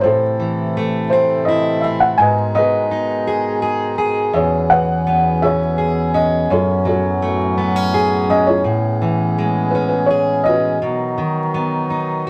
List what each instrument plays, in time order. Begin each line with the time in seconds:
0.01 steel-string acoustic guitar A2, harmonium C3 E3 A3 E4 A4, felt piano C5
0.05 felt piano E4 A4
0.40 steel-string acoustic guitar E3
0.77 steel-string acoustic guitar A3
1.10 steel-string acoustic guitar C4, felt piano C5
1.45 steel-string acoustic guitar E4, felt piano D#5
1.81 steel-string acoustic guitar C4, felt piano E5
2.00 felt piano F#5
2.18 steel-string acoustic guitar G#2, harmonium B2 D#3 G#3 D#4 G#4, felt piano B4 D#5 G#5
2.55 steel-string acoustic guitar B3, felt piano G#4 B4 D#5
2.91 steel-string acoustic guitar D#4
3.27 steel-string acoustic guitar G#4
3.62 steel-string acoustic guitar G#4
3.98 steel-string acoustic guitar G#4
4.33 steel-string acoustic guitar E2, harmonium B2 E3 B3 C#4, felt piano G#4 C#5 E5
4.70 steel-string acoustic guitar E3, felt piano B4 C#5 F#5
5.07 steel-string acoustic guitar B3
5.42 steel-string acoustic guitar C#4, felt piano G#4 C#5 E5
5.78 steel-string acoustic guitar G#4
6.14 steel-string acoustic guitar C#4, felt piano D#5
6.50 steel-string acoustic guitar F#2, harmonium A2 F#3 C#4 F#4, felt piano G#4 C#5
6.54 felt piano A4
6.85 steel-string acoustic guitar F#3, felt piano G#4 A4 C#5
7.22 steel-string acoustic guitar A3
7.58 steel-string acoustic guitar B3
7.76 steel-string acoustic guitar C#4
7.94 steel-string acoustic guitar G#4
8.30 steel-string acoustic guitar C#4, felt piano D#5
8.47 felt piano E4 G#4 C#5
8.64 steel-string acoustic guitar A2, harmonium E3 G#4
9.02 steel-string acoustic guitar E3
9.38 steel-string acoustic guitar G#3
9.71 felt piano B4
9.75 steel-string acoustic guitar C#4
9.88 felt piano B4
10.06 felt piano C#5
10.11 steel-string acoustic guitar G#4
10.44 steel-string acoustic guitar C#4, felt piano D#5
10.48 felt piano F#4 B4
10.81 harmonium B2 D#3 F#3 D#4 F#4, steel-string acoustic guitar B2
11.18 steel-string acoustic guitar D#3
11.54 steel-string acoustic guitar B3
11.90 steel-string acoustic guitar D#4